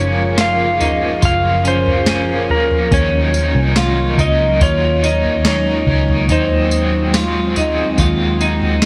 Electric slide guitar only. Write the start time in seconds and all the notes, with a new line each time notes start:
Already playing: C#5
0.41 F5
1.25 F5
1.68 C5
2.51 A#4
2.94 C#5
4.20 D#5
4.63 C#5
5.47 C#5
6.32 C5